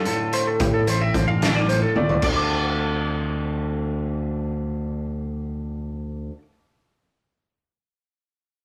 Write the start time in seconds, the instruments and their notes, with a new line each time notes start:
Already playing: clean electric guitar D3 C4 F4
0.05 clean electric guitar A2 A4, closed hi-hat
0.32 clean electric guitar A3 C5, closed hi-hat
0.47 clean electric guitar A4
0.59 picked electric bass A2, clean electric guitar A2 G4, kick, closed hi-hat
0.74 clean electric guitar A4
0.87 picked electric bass A1, clean electric guitar A3 C5, closed hi-hat
1.01 clean electric guitar C4 E5
1.14 picked electric bass A1, clean electric guitar D3 C5, kick, closed hi-hat
1.28 clean electric guitar F5
1.42 clean electric guitar D4, snare, closed hi-hat
1.55 clean electric guitar F4 D5
1.69 clean electric guitar A2 C5, closed hi-hat
1.82 clean electric guitar A4
1.96 picked electric bass C#2, clean electric guitar A3 D5, high tom
2.09 floor tom
2.22 clean electric guitar D2 D5, picked electric bass D2, kick, crash
2.27 clean electric guitar D3 F5
2.33 clean electric guitar A3 A5 D6
2.37 clean electric guitar C4
2.42 clean electric guitar F4